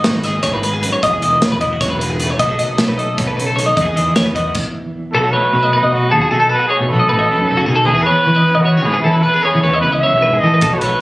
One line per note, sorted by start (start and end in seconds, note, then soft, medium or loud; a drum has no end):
0.00 0.64 G#2 medium
0.00 1.44 B3 medium
0.00 0.27 F#4 medium
0.04 0.13 G#1 medium
0.04 1.08 D#4 medium
0.04 0.15 C#5 medium
0.04 snare loud
0.04 closed hi-hat medium
0.14 0.38 G#1 medium
0.14 0.24 B4 medium
0.23 1.02 G#4 medium
0.23 0.43 D#5 medium
0.23 snare soft
0.23 closed hi-hat soft
0.43 0.91 G#1 medium
0.43 0.65 A2 medium
0.43 0.53 C#5 medium
0.43 kick loud
0.43 snare soft
0.43 closed hi-hat medium
0.54 0.62 B4 medium
0.63 0.84 G#2 medium
0.63 0.73 B4 medium
0.63 closed hi-hat medium
0.73 0.83 G#4 medium
0.83 1.03 F#2 medium
0.83 0.92 B4 medium
0.83 closed hi-hat medium
0.93 1.03 C#5 medium
1.02 1.10 E1 loud
1.02 1.81 E2 medium
1.02 1.13 D#5 medium
1.02 kick loud
1.02 closed hi-hat medium
1.13 1.23 G#4 medium
1.21 1.29 E1 medium
1.21 2.39 E3 medium
1.21 1.43 D#5 medium
1.21 closed hi-hat soft
1.41 1.49 E1 medium
1.41 2.42 B3 medium
1.41 1.52 C#5 medium
1.41 snare loud
1.41 closed hi-hat medium
1.50 1.75 E1 medium
1.50 1.60 B4 medium
1.61 1.73 E4 medium
1.61 1.80 D#5 medium
1.61 kick medium
1.61 closed hi-hat medium
1.73 2.41 F#4 soft
1.81 2.28 E1 medium
1.81 2.01 F#2 medium
1.81 1.90 C#5 medium
1.81 kick medium
1.81 snare soft
1.81 closed hi-hat medium
1.90 1.98 B4 medium
1.99 2.21 G#2 medium
1.99 2.10 B4 medium
1.99 closed hi-hat medium
2.10 2.20 G#4 medium
2.20 2.41 A2 medium
2.20 2.30 B4 medium
2.20 closed hi-hat medium
2.30 2.39 C#5 medium
2.39 2.47 B1 loud
2.39 3.17 B2 medium
2.39 2.59 F#3 medium
2.39 2.80 A3 medium
2.39 2.50 D#5 medium
2.39 kick medium
2.39 closed hi-hat medium
2.43 3.77 D#4 soft
2.43 2.98 A4 medium
2.49 2.59 G#4 medium
2.58 2.67 B1 medium
2.58 3.58 F#3 medium
2.58 2.79 D#5 medium
2.58 closed hi-hat medium
2.78 2.86 B1 medium
2.78 3.76 A3 medium
2.78 2.89 C#5 medium
2.78 snare loud
2.78 closed hi-hat medium
2.88 3.12 B1 medium
2.88 2.99 B4 medium
2.98 3.75 A4 medium
2.98 3.17 D#5 medium
2.98 closed hi-hat soft
3.17 3.66 B1 medium
3.17 3.38 B2 medium
3.17 3.28 C#5 medium
3.17 kick loud
3.17 closed hi-hat medium
3.27 3.36 B4 medium
3.37 3.58 C#3 medium
3.37 3.46 B4 medium
3.37 closed hi-hat medium
3.46 3.57 A4 medium
3.56 3.78 D#3 medium
3.56 3.66 C#5 medium
3.56 closed hi-hat medium
3.66 3.76 D#5 medium
3.77 3.85 E2 loud
3.77 5.94 E2 medium
3.77 3.97 E3 soft
3.77 3.87 D#5 medium
3.77 kick medium
3.77 closed hi-hat medium
3.81 4.16 B3 soft
3.81 4.55 D#4 soft
3.81 4.36 G#4 medium
3.86 3.97 G#4 medium
3.96 4.04 E2 medium
3.96 4.54 E3 medium
3.96 4.15 D#5 medium
3.96 closed hi-hat soft
4.16 4.24 E2 medium
4.16 4.54 B3 soft
4.16 4.26 C#5 medium
4.16 snare medium
4.16 closed hi-hat medium
4.25 4.50 E2 medium
4.25 4.36 B4 medium
4.35 4.54 F#4 medium
4.35 4.55 D#5 medium
4.35 kick medium
4.35 closed hi-hat medium
4.55 kick loud
4.55 crash medium
5.13 5.30 B1 loud
5.13 6.13 B2 medium
5.13 5.54 F#3 medium
5.13 5.33 A4 medium
5.13 5.23 A4 loud
5.17 5.35 A3 medium
5.17 5.76 D#4 medium
5.24 5.34 F#4 medium
5.31 6.50 A3 medium
5.31 5.89 B4 medium
5.31 5.53 C#5 medium
5.53 5.69 B2 medium
5.53 6.50 F#3 medium
5.53 5.63 B4 medium
5.63 5.73 D#5 medium
5.73 5.94 D#4 medium
5.73 5.83 B4 medium
5.83 6.14 B2 medium
5.83 5.93 D#5 medium
5.90 6.11 F#4 medium
5.90 6.12 B4 medium
5.96 6.33 D#4 medium
6.10 6.20 D#2 loud
6.10 6.30 G#4 medium
6.10 6.21 A4 medium
6.14 6.50 F#2 medium
6.21 6.31 F#4 medium
6.31 6.47 B2 medium
6.31 6.50 D#4 medium
6.31 6.40 G#4 medium
6.31 6.51 A4 medium
6.40 6.49 A4 medium
6.49 6.59 A4 loud
6.49 6.67 B4 medium
6.54 7.30 B2 medium
6.54 7.11 D#4 medium
6.59 6.70 F#4 medium
6.67 6.77 G#4 medium
6.67 6.89 C#5 medium
6.75 7.88 A3 medium
6.80 6.92 B2 medium
6.89 7.06 B1 medium
6.89 7.68 F#3 medium
6.89 7.64 A4 medium
6.89 6.99 B4 medium
6.99 7.09 D#5 medium
7.09 7.25 A1 medium
7.09 7.87 D#4 medium
7.09 7.19 B4 medium
7.19 7.29 D#5 medium
7.29 7.50 B2 medium
7.29 7.48 B4 medium
7.39 7.55 F#2 medium
7.48 7.70 C#3 medium
7.48 7.58 A4 medium
7.57 7.66 F#4 medium
7.66 7.88 B2 medium
7.66 7.88 D#3 medium
7.66 7.77 G#4 medium
7.76 7.85 A4 medium
7.85 8.03 E2 loud
7.85 9.25 E2 medium
7.85 8.04 G#4 loud
7.85 7.97 B4 loud
7.90 7.98 B3 soft
7.95 8.47 C#4 medium
7.95 8.06 G#4 medium
8.03 8.63 B4 loud
8.03 8.25 C#5 medium
8.10 8.67 B3 medium
8.25 8.43 E3 medium
8.25 9.23 E3 medium
8.25 8.35 B4 medium
8.35 8.45 D#5 medium
8.45 8.67 C#4 medium
8.45 8.54 B4 medium
8.55 8.86 E3 medium
8.55 8.65 D#5 medium
8.61 8.84 F#4 medium
8.65 8.77 B3 medium
8.65 8.85 C#5 medium
8.77 9.05 C#4 soft
8.82 8.94 G#2 loud
8.82 9.00 G#4 medium
8.82 8.96 B4 medium
8.87 9.23 B2 medium
8.94 9.04 G#4 medium
9.00 9.24 E4 medium
9.04 9.21 E3 medium
9.04 9.23 C#4 medium
9.04 9.15 A4 medium
9.13 9.22 B4 medium
9.23 9.44 B4 loud
9.23 9.34 B4 medium
9.27 10.04 E2 medium
9.27 9.36 B3 medium
9.34 9.84 C#4 soft
9.34 9.44 G#4 medium
9.43 9.63 G#4 medium
9.43 9.63 C#5 medium
9.47 10.84 B3 medium
9.55 9.65 E3 medium
9.61 9.79 E2 medium
9.61 9.73 B4 medium
9.61 9.80 C#5 medium
9.67 10.61 E3 medium
9.73 9.83 D#5 medium
9.81 9.99 C#2 medium
9.81 9.90 B4 medium
9.81 9.92 B4 medium
9.87 10.61 C#4 medium
9.92 10.03 D#5 medium
9.99 10.23 C#5 medium
9.99 10.41 E5 loud
10.04 10.23 F#2 medium
10.13 10.29 B1 medium
10.22 10.44 G#2 medium
10.22 10.33 B4 medium
10.33 10.44 G#4 medium
10.39 10.64 E3 medium
10.39 10.75 D#5 medium
10.44 10.63 A2 medium
10.44 10.53 A4 medium
10.54 10.62 B4 medium
10.61 10.78 B1 loud
10.61 11.01 B2 medium
10.61 11.01 D#4 medium
10.61 10.74 A4 medium
10.61 kick loud
10.61 closed hi-hat medium
10.73 10.83 F#4 medium
10.73 10.80 C#5 medium
10.79 11.01 B4 medium
10.79 kick medium
10.79 closed hi-hat medium
10.84 11.01 A3 medium
10.84 11.01 C#5 medium